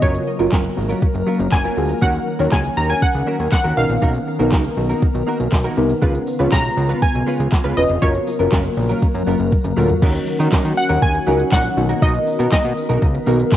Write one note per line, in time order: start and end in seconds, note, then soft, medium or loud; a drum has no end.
0.02 0.19 F#1 loud
0.02 0.22 F#3 medium
0.02 2.00 F#3 medium
0.02 2.00 A#3 medium
0.02 0.14 C#4 medium
0.02 0.30 F4 medium
0.02 0.14 F4 loud
0.02 0.30 F#4 medium
0.02 3.73 A#4 medium
0.02 0.30 A#4 medium
0.02 0.13 A#4 medium
0.02 0.98 C#5 medium
0.02 kick loud
0.02 closed hi-hat medium
0.14 muted clean electric guitar stroke soft
0.14 closed hi-hat soft
0.27 muted clean electric guitar stroke soft
0.39 0.48 F#1 loud
0.39 0.51 F#3 medium
0.39 0.51 C#4 medium
0.39 1.14 F4 medium
0.39 0.52 F4 medium
0.39 1.14 F#4 medium
0.39 0.52 A#4 medium
0.39 1.14 A#4 medium
0.39 closed hi-hat soft
0.52 0.69 F#1 medium
0.52 0.72 F#3 medium
0.52 0.64 C#4 loud
0.52 0.64 F4 medium
0.52 0.63 A#4 loud
0.52 kick loud
0.52 snare medium
0.52 clap loud
0.52 closed hi-hat medium
0.64 muted clean electric guitar stroke soft
0.64 closed hi-hat medium
0.77 0.94 G#1 loud
0.77 muted clean electric guitar stroke soft
0.89 1.06 F#3 soft
0.89 1.06 C#4 medium
0.89 1.06 F4 medium
0.89 1.05 A#4 medium
0.89 closed hi-hat medium
1.02 kick loud
1.02 closed hi-hat medium
1.14 1.23 F#1 medium
1.14 muted clean electric guitar stroke soft
1.14 closed hi-hat soft
1.27 1.47 F#3 medium
1.27 1.40 C#4 medium
1.27 1.39 F4 medium
1.27 1.38 A#4 medium
1.39 1.48 F#1 medium
1.39 muted clean electric guitar stroke soft
1.39 closed hi-hat medium
1.52 1.69 F#1 loud
1.52 2.04 G#5 medium
1.52 muted clean electric guitar stroke medium
1.52 kick loud
1.52 snare medium
1.52 clap loud
1.52 closed hi-hat medium
1.64 1.76 F#3 medium
1.64 1.76 C#4 medium
1.64 1.77 F4 medium
1.64 1.77 A#4 medium
1.64 closed hi-hat medium
1.77 1.94 D2 medium
1.77 1.96 F4 medium
1.77 1.96 F#4 medium
1.77 1.96 G#4 medium
1.77 muted clean electric guitar stroke soft
1.89 muted clean electric guitar stroke soft
1.89 closed hi-hat medium
2.02 2.19 D#2 loud
2.02 5.98 D#3 medium
2.02 2.22 A#3 medium
2.02 3.75 C#4 medium
2.02 2.14 C#4 medium
2.02 2.30 D#4 medium
2.02 2.30 F#4 medium
2.02 2.14 F#4 loud
2.02 2.13 A#4 loud
2.02 2.30 C#5 medium
2.02 2.54 F#5 medium
2.02 kick loud
2.02 closed hi-hat medium
2.14 muted clean electric guitar stroke soft
2.14 closed hi-hat soft
2.27 muted clean electric guitar stroke soft
2.39 2.48 D#2 loud
2.39 2.50 A#3 medium
2.39 2.51 C#4 medium
2.39 3.14 D#4 medium
2.39 3.14 F#4 medium
2.39 2.52 F#4 medium
2.39 2.52 A#4 medium
2.39 3.14 C#5 medium
2.39 closed hi-hat soft
2.52 2.69 C#2 medium
2.52 2.72 A#3 medium
2.52 2.64 C#4 medium
2.52 2.64 F#4 loud
2.52 2.63 A#4 medium
2.52 2.75 G#5 loud
2.52 kick loud
2.52 snare medium
2.52 clap loud
2.52 closed hi-hat medium
2.64 muted clean electric guitar stroke soft
2.64 closed hi-hat medium
2.77 2.94 D#2 loud
2.77 2.90 A#5 loud
2.77 muted clean electric guitar stroke soft
2.89 3.06 A#3 medium
2.89 3.06 C#4 medium
2.89 3.06 F#4 medium
2.89 3.06 A#4 medium
2.89 3.03 G#5 loud
2.89 closed hi-hat medium
3.02 3.51 F#5 loud
3.02 kick loud
3.02 closed hi-hat medium
3.14 3.23 C#2 medium
3.14 muted clean electric guitar stroke soft
3.14 closed hi-hat medium
3.27 3.47 A#3 medium
3.27 3.39 C#4 medium
3.27 3.39 F#4 medium
3.27 3.38 A#4 medium
3.39 3.48 D#2 medium
3.39 muted clean electric guitar stroke soft
3.39 closed hi-hat medium
3.52 3.78 F#5 medium
3.52 muted clean electric guitar stroke soft
3.52 kick loud
3.52 snare medium
3.52 clap loud
3.52 closed hi-hat medium
3.64 3.73 D#2 medium
3.64 3.76 A#3 medium
3.64 3.77 C#4 medium
3.64 3.77 F#4 medium
3.64 3.77 A#4 medium
3.64 closed hi-hat medium
3.77 3.86 B1 loud
3.77 4.27 B3 medium
3.77 7.98 B3 medium
3.77 4.27 D#4 medium
3.77 6.00 A#4 medium
3.77 4.27 A#4 medium
3.77 4.48 F5 medium
3.77 muted clean electric guitar stroke soft
3.89 3.98 A#1 medium
3.89 muted clean electric guitar stroke soft
3.89 closed hi-hat medium
4.02 4.19 B1 loud
4.02 4.22 A#3 medium
4.02 4.15 D#4 medium
4.02 4.14 F#4 medium
4.02 4.13 A#4 medium
4.02 kick loud
4.02 closed hi-hat medium
4.14 muted clean electric guitar stroke medium
4.14 closed hi-hat soft
4.27 muted clean electric guitar stroke soft
4.39 4.54 B1 medium
4.39 4.50 A#3 medium
4.39 5.14 B3 medium
4.39 5.14 D#4 medium
4.39 4.51 D#4 medium
4.39 4.52 F#4 medium
4.39 4.52 A#4 medium
4.39 5.14 A#4 loud
4.39 closed hi-hat soft
4.52 4.69 C#2 medium
4.52 4.72 A#3 medium
4.52 4.64 D#4 loud
4.52 4.64 F#4 loud
4.52 4.63 A#4 medium
4.52 kick loud
4.52 snare medium
4.52 clap loud
4.52 closed hi-hat medium
4.64 muted clean electric guitar stroke soft
4.64 closed hi-hat medium
4.77 4.94 B1 medium
4.77 muted clean electric guitar stroke soft
4.89 5.06 A#3 medium
4.89 5.06 D#4 medium
4.89 5.06 F#4 medium
4.89 5.05 A#4 medium
4.89 closed hi-hat medium
5.02 kick loud
5.02 closed hi-hat medium
5.14 5.23 B1 medium
5.14 muted clean electric guitar stroke soft
5.14 closed hi-hat medium
5.27 5.47 A#3 medium
5.27 5.39 D#4 medium
5.27 5.39 F#4 medium
5.27 5.38 A#4 medium
5.39 5.48 B1 medium
5.39 muted clean electric guitar stroke medium
5.39 closed hi-hat medium
5.52 5.69 B1 medium
5.52 muted clean electric guitar stroke soft
5.52 kick loud
5.52 snare medium
5.52 clap loud
5.52 closed hi-hat medium
5.64 5.76 A#3 medium
5.64 5.76 D#4 medium
5.64 5.77 F#4 medium
5.64 5.77 A#4 medium
5.64 closed hi-hat medium
5.77 5.94 C2 loud
5.77 5.96 B3 medium
5.77 5.96 D#4 medium
5.77 5.96 A#4 loud
5.77 muted clean electric guitar stroke soft
5.89 muted clean electric guitar stroke soft
5.89 closed hi-hat medium
6.02 6.19 C#2 loud
6.02 8.00 C#3 medium
6.02 6.22 G#3 medium
6.02 6.30 C#4 medium
6.02 6.14 C#4 medium
6.02 6.30 F4 medium
6.02 8.00 F4 medium
6.02 6.14 F4 medium
6.02 6.30 B4 loud
6.02 6.13 B4 loud
6.02 kick loud
6.02 closed hi-hat medium
6.14 muted clean electric guitar stroke medium
6.14 closed hi-hat soft
6.27 muted clean electric guitar stroke soft
6.27 open hi-hat medium
6.39 6.48 C#2 medium
6.39 6.50 G#3 medium
6.39 7.14 C#4 medium
6.39 6.51 C#4 medium
6.39 7.14 F4 medium
6.39 6.52 F4 medium
6.39 6.52 B4 medium
6.39 7.14 C#5 medium
6.39 closed hi-hat soft
6.52 6.69 B1 loud
6.52 6.72 G#3 medium
6.52 6.64 C#4 medium
6.52 6.64 F4 medium
6.52 6.63 B4 medium
6.52 6.99 A#5 loud
6.52 kick loud
6.52 snare medium
6.52 clap loud
6.52 closed hi-hat medium
6.64 muted clean electric guitar stroke medium
6.64 closed hi-hat medium
6.77 6.94 C#2 loud
6.77 muted clean electric guitar stroke soft
6.77 open hi-hat medium
6.89 7.06 G#3 medium
6.89 7.06 C#4 medium
6.89 7.06 F4 medium
6.89 7.06 B4 medium
6.89 closed hi-hat medium
7.02 7.73 G#5 loud
7.02 kick loud
7.02 closed hi-hat medium
7.14 7.23 B1 medium
7.14 muted clean electric guitar stroke soft
7.14 closed hi-hat medium
7.27 7.47 G#3 medium
7.27 7.39 C#4 medium
7.27 7.39 F4 medium
7.27 7.38 B4 medium
7.27 open hi-hat medium
7.39 7.48 C#2 medium
7.39 muted clean electric guitar stroke medium
7.39 closed hi-hat medium
7.52 muted clean electric guitar stroke soft
7.52 kick loud
7.52 snare medium
7.52 clap loud
7.52 closed hi-hat medium
7.64 7.73 C#2 medium
7.64 7.76 G#3 medium
7.64 7.76 C#4 medium
7.64 7.77 F4 medium
7.64 7.77 B4 medium
7.64 closed hi-hat medium
7.77 7.86 E1 loud
7.77 7.96 C#4 medium
7.77 7.96 F4 medium
7.77 7.96 B4 medium
7.77 8.03 D#5 medium
7.77 muted clean electric guitar stroke soft
7.77 open hi-hat medium
7.89 7.98 F1 loud
7.89 muted clean electric guitar stroke medium
7.89 closed hi-hat medium
8.02 8.19 F#1 loud
8.02 8.22 F#3 medium
8.02 10.00 F#3 medium
8.02 10.00 A#3 medium
8.02 8.15 C#4 medium
8.02 8.30 F4 medium
8.02 8.14 F4 loud
8.02 8.30 F#4 medium
8.02 10.00 A#4 medium
8.02 8.30 A#4 medium
8.02 8.13 A#4 loud
8.02 8.98 C#5 medium
8.02 kick loud
8.02 closed hi-hat medium
8.14 muted clean electric guitar stroke soft
8.14 closed hi-hat soft
8.27 muted clean electric guitar stroke soft
8.27 open hi-hat medium
8.39 8.48 F#1 medium
8.39 8.51 F#3 medium
8.39 8.51 C#4 medium
8.39 9.14 F4 medium
8.39 8.52 F4 medium
8.39 9.14 F#4 medium
8.39 8.52 A#4 medium
8.39 9.14 A#4 medium
8.39 closed hi-hat soft
8.52 8.69 F#1 medium
8.52 8.72 F#3 medium
8.52 8.64 C#4 loud
8.52 8.64 F4 loud
8.52 8.63 A#4 loud
8.52 kick loud
8.52 snare medium
8.52 clap loud
8.52 closed hi-hat medium
8.64 muted clean electric guitar stroke soft
8.64 closed hi-hat medium
8.77 8.94 A#1 medium
8.77 muted clean electric guitar stroke soft
8.77 open hi-hat medium
8.89 9.06 F#3 medium
8.89 9.06 C#4 medium
8.89 9.06 F4 medium
8.89 9.05 A#4 medium
8.89 closed hi-hat medium
9.02 kick loud
9.02 closed hi-hat medium
9.14 9.23 F#2 medium
9.14 muted clean electric guitar stroke soft
9.14 closed hi-hat medium
9.27 9.36 F#1 loud
9.27 9.47 F#3 medium
9.27 9.39 C#4 medium
9.27 9.39 F4 medium
9.27 9.38 A#4 loud
9.27 open hi-hat medium
9.39 9.57 F#1 medium
9.39 muted clean electric guitar stroke medium
9.39 closed hi-hat medium
9.52 muted clean electric guitar stroke soft
9.52 kick loud
9.52 closed hi-hat medium
9.52 high tom medium
9.64 9.73 F#1 medium
9.64 muted clean electric guitar stroke medium
9.64 closed hi-hat medium
9.64 mid tom medium
9.77 9.94 D2 loud
9.77 9.97 F#3 medium
9.77 9.89 C#4 medium
9.77 9.96 F4 loud
9.77 9.89 F4 medium
9.77 9.96 F#4 medium
9.77 9.96 A#4 loud
9.77 9.88 A#4 loud
9.77 mid tom medium
9.77 open hi-hat medium
9.89 muted clean electric guitar stroke soft
9.89 closed hi-hat medium
9.89 floor tom loud
10.02 10.19 D#2 loud
10.02 13.57 D#3 medium
10.02 10.22 F#3 medium
10.02 10.77 C#4 loud
10.02 11.75 C#4 medium
10.02 10.14 C#4 medium
10.02 10.77 D#4 medium
10.02 10.14 D#4 medium
10.02 11.75 F#4 medium
10.02 10.77 F#4 medium
10.02 10.77 A#4 loud
10.02 10.13 A#4 medium
10.02 kick loud
10.02 crash loud
10.14 muted clean electric guitar stroke medium
10.14 closed hi-hat soft
10.27 muted clean electric guitar stroke soft
10.27 open hi-hat medium
10.39 10.48 D#3 loud
10.39 10.50 F#3 medium
10.39 10.51 C#4 medium
10.39 10.52 D#4 medium
10.39 10.52 A#4 medium
10.39 closed hi-hat medium
10.52 10.72 F#3 medium
10.52 10.64 C#4 medium
10.52 10.64 D#4 medium
10.52 10.63 A#4 medium
10.52 kick loud
10.52 snare medium
10.52 clap loud
10.52 tambourine loud
10.64 10.73 D#3 loud
10.64 muted clean electric guitar stroke soft
10.64 closed hi-hat medium
10.77 11.03 F#5 loud
10.77 muted clean electric guitar stroke soft
10.77 open hi-hat medium
10.89 10.98 D#2 medium
10.89 11.06 F#3 medium
10.89 11.06 C#4 medium
10.89 11.06 D#4 medium
10.89 11.06 A#4 medium
10.89 closed hi-hat medium
11.02 11.19 D#2 medium
11.02 11.54 G#5 loud
11.02 kick loud
11.14 muted clean electric guitar stroke soft
11.14 closed hi-hat medium
11.27 11.44 C#2 medium
11.27 11.47 F#3 medium
11.27 11.77 C#4 medium
11.27 11.39 C#4 medium
11.27 11.76 D#4 medium
11.27 11.39 D#4 medium
11.27 11.76 F#4 medium
11.27 11.76 A#4 medium
11.27 11.38 A#4 loud
11.27 open hi-hat medium
11.39 muted clean electric guitar stroke soft
11.39 closed hi-hat medium
11.52 11.69 A#1 medium
11.52 11.72 F#3 medium
11.52 11.64 C#4 medium
11.52 11.64 D#4 medium
11.52 11.63 A#4 loud
11.52 12.04 F#5 loud
11.52 kick loud
11.52 snare medium
11.52 clap loud
11.52 tambourine medium
11.64 muted clean electric guitar stroke soft
11.64 closed hi-hat medium
11.77 11.94 B1 loud
11.77 12.57 B3 medium
11.77 13.57 B3 medium
11.77 12.57 D#4 medium
11.77 12.57 F#4 medium
11.77 13.57 A#4 medium
11.77 12.57 A#4 medium
11.77 muted clean electric guitar stroke soft
11.77 open hi-hat medium
11.89 12.00 A#3 medium
11.89 12.01 D#4 medium
11.89 12.02 F#4 medium
11.89 12.02 A#4 medium
11.89 closed hi-hat medium
12.02 12.19 B1 loud
12.02 12.22 A#3 medium
12.02 12.14 D#4 loud
12.02 12.14 F#4 loud
12.02 12.13 A#4 medium
12.02 12.49 D#5 medium
12.02 kick loud
12.14 muted clean electric guitar stroke soft
12.14 closed hi-hat soft
12.27 muted clean electric guitar stroke soft
12.27 open hi-hat medium
12.39 12.48 B2 loud
12.39 12.51 A#3 medium
12.39 12.51 D#4 medium
12.39 12.52 F#4 medium
12.39 12.52 A#4 medium
12.39 closed hi-hat medium
12.52 12.72 A#3 medium
12.52 12.64 D#4 loud
12.52 12.64 F#4 medium
12.52 12.63 A#4 loud
12.52 13.48 D#5 medium
12.52 kick loud
12.52 snare medium
12.52 clap loud
12.52 tambourine loud
12.64 12.73 B2 loud
12.64 muted clean electric guitar stroke medium
12.64 closed hi-hat medium
12.77 muted clean electric guitar stroke soft
12.77 open hi-hat medium
12.89 12.98 B1 medium
12.89 13.06 A#3 medium
12.89 13.06 D#4 medium
12.89 13.06 F#4 medium
12.89 13.05 A#4 medium
12.89 closed hi-hat medium
13.02 13.19 C#2 loud
13.02 kick loud
13.14 muted clean electric guitar stroke soft
13.14 closed hi-hat medium
13.27 13.44 B1 loud
13.27 13.47 A#3 medium
13.27 13.57 B3 medium
13.27 13.57 D#4 medium
13.27 13.39 D#4 medium
13.27 13.57 F#4 medium
13.27 13.39 F#4 medium
13.27 13.57 A#4 loud
13.27 13.38 A#4 medium
13.27 open hi-hat medium
13.39 muted clean electric guitar stroke medium
13.39 closed hi-hat medium
13.52 muted clean electric guitar stroke soft
13.52 kick loud
13.52 snare medium
13.52 clap loud
13.52 tambourine medium